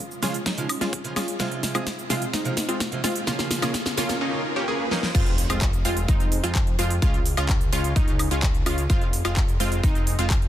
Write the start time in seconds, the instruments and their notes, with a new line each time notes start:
Already playing: riser
0.11 shaker
0.22 steel-string acoustic guitar C#3 F3 G#3 F4, supersaw synth G#3 C#4 F4, synth pluck F4, snare, open hi-hat, shaker
0.34 closed hi-hat, shaker
0.46 supersaw synth G#3 C#4 D#4, synth pluck D#4, kick, snare, closed hi-hat, shaker
0.57 steel-string acoustic guitar C#3 F3 G#3 F4, closed hi-hat, shaker
0.69 open hi-hat, high woodblock, shaker
0.81 supersaw synth G#3 C#4 F4, synth pluck F4, snare, closed hi-hat, shaker
0.93 kick, closed hi-hat, shaker
1.04 steel-string acoustic guitar C#3 F3 G#3 F4, closed hi-hat
1.16 supersaw synth G#3 C#4 F4, synth pluck F4, snare, open hi-hat, high woodblock, shaker
1.28 closed hi-hat, shaker
1.39 steel-string acoustic guitar C3 F3 G#3 F4, supersaw synth G#3 C4 F4, synth pluck F4, kick, snare, closed hi-hat, shaker
1.51 closed hi-hat
1.63 snare, open hi-hat, shaker
1.74 steel-string acoustic guitar C3 F3 G#3 G#4, supersaw synth G#3 C4 F4, synth pluck F4, closed hi-hat, high woodblock, shaker
1.87 kick, snare, closed hi-hat, shaker
1.99 shaker
2.09 steel-string acoustic guitar C3 F3 G#3 F4, supersaw synth G#3 C4 F4, synth pluck F4, snare, open hi-hat, shaker
2.22 closed hi-hat, shaker
2.33 supersaw synth G#3 C4 D#4, synth pluck D#4, kick, snare, closed hi-hat, shaker
2.44 steel-string acoustic guitar C3 F3 G#3 F4, closed hi-hat, shaker
2.57 snare, open hi-hat, shaker
2.69 supersaw synth G#3 C4 F4, synth pluck F4, closed hi-hat, shaker
2.80 kick, snare, closed hi-hat, shaker
2.92 steel-string acoustic guitar C3 F3 G#3 F4, closed hi-hat
3.04 supersaw synth G#3 C4 F4, synth pluck F4, snare, open hi-hat, shaker
3.16 closed hi-hat, shaker
3.27 steel-string acoustic guitar C#3 F3 A#3 F4, supersaw synth A#3 C#4 F4, synth pluck F4, kick, snare, closed hi-hat, shaker
3.39 snare, closed hi-hat
3.51 snare, open hi-hat, shaker
3.62 steel-string acoustic guitar C#3 F3 A#3 G#4, supersaw synth A#3 C#4 F4, synth pluck F4, snare, closed hi-hat, high woodblock, shaker
3.74 kick, snare, closed hi-hat, shaker
3.86 snare, shaker
3.97 steel-string acoustic guitar C#3 F3 A#3 F4, supersaw synth A#3 C#4 F4, synth pluck F4, snare, open hi-hat, shaker
4.09 snare, closed hi-hat, shaker
4.21 supersaw synth A#3 C#4 D#4, swell
4.56 supersaw synth A#3 C#4 G4
4.68 supersaw synth A#3 C#4 G#4
4.91 supersaw synth A#3 C#4 D#4, snare
5.03 snare
5.15 analog synth bass F1, supersaw synth G#3 C4 F4, synth pluck F4, kick, closed hi-hat, crash, sub drop, shaker
5.26 closed hi-hat
5.38 open hi-hat, shaker
5.50 analog synth bass F1, supersaw synth G#3 C4 F4, synth pluck F4, closed hi-hat, high woodblock, shaker
5.62 kick, clap, closed hi-hat, shaker
5.73 closed hi-hat, shaker
5.85 analog synth bass F1, supersaw synth G#3 C4 F4, synth pluck F4, open hi-hat, shaker
5.97 closed hi-hat, shaker
6.08 analog synth bass F1, supersaw synth G#3 C4 D#4, synth pluck D#4, kick, closed hi-hat, shaker
6.20 closed hi-hat, shaker
6.32 open hi-hat, shaker
6.44 analog synth bass F2, supersaw synth G#3 C4 F4, synth pluck F4, closed hi-hat, shaker
6.55 kick, clap, closed hi-hat, shaker
6.67 closed hi-hat
6.79 analog synth bass F2, supersaw synth G#3 C4 F4, synth pluck F4, open hi-hat, shaker
6.90 closed hi-hat, shaker
7.02 analog synth bass C#2, supersaw synth G#3 C#4 F4, synth pluck F4, kick, closed hi-hat, shaker
7.14 closed hi-hat
7.26 open hi-hat, shaker
7.37 analog synth bass C#2, supersaw synth G#3 C#4 F4, synth pluck F4, closed hi-hat, high woodblock, shaker
7.49 kick, clap, closed hi-hat, shaker
7.61 closed hi-hat, shaker
7.73 analog synth bass C#2, supersaw synth G#3 C#4 F4, synth pluck F4, open hi-hat, shaker
7.84 closed hi-hat, shaker
7.96 analog synth bass C#2, supersaw synth G#3 C#4 D#4, synth pluck D#4, kick, closed hi-hat, shaker
8.08 closed hi-hat, shaker
8.19 open hi-hat, high woodblock, shaker
8.31 analog synth bass C#2, supersaw synth G#3 C#4 F4, synth pluck F4, closed hi-hat, shaker
8.43 kick, clap, closed hi-hat, shaker
8.55 closed hi-hat
8.66 analog synth bass C#2, supersaw synth G#3 C#4 F4, synth pluck F4, open hi-hat, high woodblock, shaker
8.78 closed hi-hat, shaker
8.90 analog synth bass F1, supersaw synth G#3 C4 F4, synth pluck F4, kick, closed hi-hat, shaker
9.01 closed hi-hat
9.13 open hi-hat, shaker
9.25 analog synth bass F1, supersaw synth G#3 C4 F4, synth pluck F4, closed hi-hat, high woodblock, shaker
9.37 kick, clap, closed hi-hat, shaker
9.48 closed hi-hat, shaker
9.60 analog synth bass F1, supersaw synth G#3 C4 F4, synth pluck F4, open hi-hat, shaker
9.72 closed hi-hat, shaker
9.83 analog synth bass F1, supersaw synth G#3 C4 D#4, synth pluck D#4, kick, closed hi-hat, shaker
9.95 closed hi-hat, shaker
10.07 open hi-hat, shaker
10.19 analog synth bass F1, supersaw synth G#3 C4 F4, synth pluck F4, closed hi-hat, shaker
10.30 kick, clap, closed hi-hat, shaker
10.42 closed hi-hat